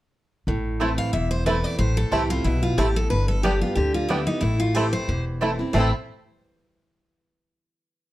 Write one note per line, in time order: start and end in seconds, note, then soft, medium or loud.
0.47 0.97 A1 loud
0.47 1.11 A2 medium
0.80 1.12 E3 medium
0.80 0.90 A3 medium
0.80 1.12 A3 medium
0.80 0.89 A3 medium
0.80 1.12 C4 medium
0.80 0.91 E4 medium
0.80 0.89 E4 medium
0.80 1.13 E4 medium
0.80 0.91 C5 loud
0.80 0.91 A5 medium
0.98 1.12 F5 medium
1.13 1.63 E1 medium
1.13 1.76 E2 medium
1.13 1.30 E5 medium
1.31 1.45 C5 medium
1.46 1.78 E3 medium
1.46 1.56 A3 medium
1.46 1.55 A3 medium
1.46 1.78 A3 medium
1.46 1.78 C4 medium
1.46 1.56 E4 medium
1.46 1.55 E4 medium
1.46 1.78 E4 medium
1.46 1.64 B4 medium
1.46 1.56 C5 loud
1.46 1.57 A5 medium
1.64 1.78 D5 loud
1.78 2.04 A1 medium
1.78 2.42 A2 medium
1.78 1.97 C5 medium
1.97 2.12 A4 medium
2.11 2.40 C2 medium
2.11 2.29 E3 medium
2.11 2.22 A3 medium
2.11 2.30 A3 medium
2.11 2.20 A3 medium
2.11 2.30 C4 medium
2.11 2.22 E4 medium
2.11 2.21 E4 medium
2.11 2.28 E4 medium
2.11 2.30 G4 medium
2.11 2.22 C5 medium
2.11 2.22 A5 loud
2.30 2.45 C4 soft
2.30 2.44 E4 medium
2.30 2.45 F4 loud
2.44 2.73 B1 medium
2.44 2.77 B2 medium
2.44 2.62 E4 medium
2.63 2.78 F4 medium
2.77 3.06 A1 medium
2.77 3.09 A2 medium
2.77 2.88 A3 medium
2.77 2.86 A3 medium
2.77 2.88 E4 medium
2.77 2.87 E4 medium
2.77 2.96 G4 medium
2.77 2.88 C5 medium
2.77 2.88 A5 medium
2.96 3.10 A4 medium
3.10 3.61 G1 medium
3.10 3.74 G2 medium
3.10 3.28 B4 medium
3.28 3.43 A4 medium
3.43 3.61 D3 medium
3.43 3.61 G3 medium
3.43 3.54 B3 medium
3.43 3.62 B3 medium
3.43 3.52 B3 medium
3.43 3.52 D4 medium
3.43 3.61 G4 medium
3.43 3.54 G4 medium
3.43 3.60 G4 medium
3.43 3.53 G4 medium
3.43 3.54 D5 loud
3.43 3.54 G5 loud
3.61 3.77 B3 soft
3.61 3.75 F4 medium
3.61 3.76 G4 medium
3.75 4.26 D2 medium
3.75 4.08 D3 medium
3.75 3.94 G4 medium
3.94 4.09 F4 medium
4.09 4.27 D3 medium
4.09 4.27 G3 medium
4.09 4.19 B3 medium
4.09 4.18 B3 medium
4.09 4.27 B3 medium
4.09 4.18 D4 medium
4.09 4.27 E4 medium
4.09 4.20 G4 medium
4.09 4.18 G4 medium
4.09 4.27 G4 medium
4.09 4.20 D5 medium
4.09 4.20 G5 medium
4.27 4.43 B3 medium
4.27 4.42 D#4 medium
4.27 4.42 G4 medium
4.41 4.92 A1 medium
4.41 5.05 A2 medium
4.41 4.59 E4 medium
4.60 4.74 F4 medium
4.74 5.07 E3 medium
4.74 4.85 A3 medium
4.74 5.07 A3 medium
4.74 4.84 A3 medium
4.74 5.07 C4 medium
4.74 4.86 E4 medium
4.74 4.84 E4 medium
4.74 5.08 E4 medium
4.74 4.93 G4 medium
4.74 4.86 C5 medium
4.74 4.86 A5 medium
4.93 5.24 C5 medium
5.08 5.58 E1 medium
5.08 5.71 E2 medium
5.41 5.59 E3 medium
5.41 5.51 A3 medium
5.41 5.59 A3 medium
5.41 5.50 A3 medium
5.41 5.59 C4 medium
5.41 5.51 E4 medium
5.41 5.58 E4 medium
5.41 5.50 E4 medium
5.41 5.51 C5 loud
5.41 5.52 A5 medium
5.59 5.74 C4 soft
5.59 5.73 E4 medium
5.73 5.91 A1 medium
5.73 5.88 A2 medium
5.73 5.89 E3 medium
5.73 5.88 A3 medium
5.73 5.91 A3 medium
5.73 5.89 A3 medium
5.73 5.89 C4 medium
5.73 5.92 C4 medium
5.73 5.89 E4 medium
5.73 5.91 C5 medium
5.73 5.89 C5 medium
5.73 5.89 A5 medium
5.78 5.93 E4 medium
5.78 5.94 A4 medium